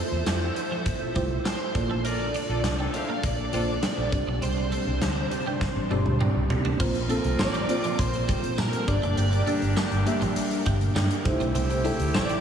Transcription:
Already playing: F3 A3 E4 F4 A4 C5 E5
0.12 E2
0.26 F2 G3, snare, closed hi-hat
0.56 muted clean electric guitar stroke, closed hi-hat
0.71 F3
0.86 kick, closed hi-hat
1.15 C2 G3 A3 E4 F4 C5, kick, closed hi-hat
1.45 G3 C5, snare, closed hi-hat
1.74 A#1 A#3 D4 F4 A4 D5, muted clean electric guitar stroke, kick, closed hi-hat
1.90 A3
2.04 A#3 D4 F4 A#4 D5, closed hi-hat
2.19 muted clean electric guitar stroke
2.34 D4, closed hi-hat
2.49 A#1 D4 F4 A4
2.64 C2 D5, snare, closed hi-hat
2.79 C4 D4 F4 A4
2.94 C4 E4 G4 F5, muted clean electric guitar stroke, closed hi-hat
3.09 A#3
3.23 A#1 D5, kick, closed hi-hat
3.53 A#1 A#3 C4 D4 F4 A4 C5 D5, closed hi-hat
3.83 C4, snare, closed hi-hat
3.97 A#1, muted clean electric guitar stroke
4.12 C2 C3 G3 C4 D4 G4 D5, kick, closed hi-hat
4.27 B1 D4
4.42 C2 C4 C5, closed hi-hat
4.57 muted clean electric guitar stroke
4.72 A3, closed hi-hat
4.87 C2
5.02 D2 G3, snare, closed hi-hat
5.31 muted clean electric guitar stroke, closed hi-hat
5.46 G3
5.61 kick, snare
5.76 A1
5.90 G1 A3 C4 D4 G4 D5, high tom
6.06 D2, high tom
6.20 C4, mid tom
6.35 C2
6.50 C3, muted clean electric guitar stroke, floor tom
6.65 D4, floor tom
6.79 A#1 F3 A#3 C4 F4 A#4 C5, kick, crash
6.95 muted clean electric guitar stroke, closed hi-hat
7.09 A3 A#3 C4 F4 A4, closed hi-hat
7.24 C2, closed hi-hat
7.39 A1 D5 D6, snare, tambourine
7.54 G3, closed hi-hat
7.68 A#3 C4 F4 C5, muted clean electric guitar stroke, closed hi-hat
7.84 F3, closed hi-hat
7.99 A#1 C5 C6, kick, closed hi-hat
8.14 closed hi-hat
8.28 G3, kick, closed hi-hat
8.44 closed hi-hat
8.58 A#2 G3 A#4 A#5, snare, tambourine
8.73 muted clean electric guitar stroke, closed hi-hat
8.87 G1 G3 A#3 D4 G4 A#4 D5 D6, kick, closed hi-hat
9.02 F#1 A3, closed hi-hat
9.17 G1 G3, closed hi-hat
9.32 muted clean electric guitar stroke, closed hi-hat
9.47 A3 A#3 D4 G4 D5, closed hi-hat
9.62 G1, closed hi-hat
9.76 G3, snare, tambourine
9.91 G1, closed hi-hat
10.06 A#3 D4 G4 E5, muted clean electric guitar stroke, closed hi-hat
10.21 A1 F3, closed hi-hat
10.36 closed hi-hat
10.51 closed hi-hat
10.66 G1 G3 F5, kick, closed hi-hat
10.81 closed hi-hat
10.95 G2 G3 G5, snare, tambourine
11.11 closed hi-hat
11.25 C2 C3 A3 C4 D#4 E4 G4 C5, muted clean electric guitar stroke, kick, closed hi-hat
11.32 E4
11.40 B1 C4, closed hi-hat
11.55 C2 C4, closed hi-hat
11.70 muted clean electric guitar stroke, closed hi-hat
11.84 A3 D4 E4 G4 A4, closed hi-hat
12.00 D2, closed hi-hat
12.14 A1 D5 D6, snare, tambourine
12.29 C4, closed hi-hat

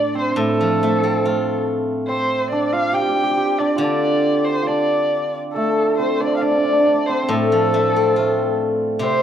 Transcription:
Already playing: A2 A3 D4 D5
0.15 C4 C5
0.31 C4
0.36 A2 A3 A4
0.61 F3
0.83 A3
1.04 C4
1.25 A3 F4
2.08 C4 C5
2.51 D4 D5
2.73 F4 F5
2.93 G4 G5
3.01 G4
3.09 G4
3.15 G4
3.23 G4
3.31 G4
3.37 G4
3.45 G4
3.58 D4 D5
3.76 D3 F4 D5
3.84 D4
4.45 C5
4.62 F4
4.67 D4 D5
5.54 A3 A4
5.98 C4 C5
6.20 D4 D5
6.28 C6 D6
6.33 F5 A5
6.38 F5 G5
6.42 D4 D5
6.51 D4
6.58 D4
6.65 D4
6.72 D4
6.80 D4
6.86 D4
6.94 D4
7.06 C4 C5
7.23 C4 C5
7.29 A2 A3 A4
7.52 F3
7.74 A3
7.96 C4
8.16 A3 F4
8.99 C3 C4 C5

